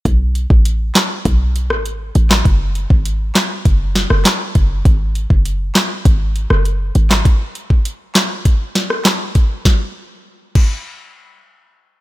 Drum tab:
CC |----------------|----------------|----------------|----------------|
HH |x-x-x-x-x-x-x-x-|x-x-x-x-x-x-x-x-|x-x-x-x-x-x-x-x-|x-x-x-x-x-x-x-x-|
CP |------x--------x|------x-----x---|------x--------x|------x-----x---|
SD |------o----r---o|------o---oro---|------o----r---o|------o---oro---|
BD |o--o----o-------|o--o----o-----o-|o--o----o-------|o--o----o-----o-|

CC |------x---------|
HH |----------------|
CP |----------------|
SD |o---------------|
BD |o-----o---------|